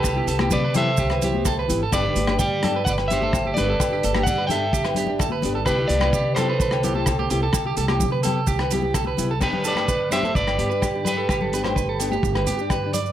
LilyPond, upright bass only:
\new Staff \with { instrumentName = "Upright bass" } { \clef bass \time 4/4 \key g \major \tempo 4 = 128 c,8 c,8 c4 c,4. aes,,8 | g,,8 g,,8 g,4 g,,4. g,,8 | g,,8 g,,8 g,4 g,,4. g,,8 | c,8 c,8 c4 c,4. c,8 |
c,8 c,8 c4 c,4. c,8 | g,,2 g,,8 g,4. | g,,2 g,,8 g,4. | }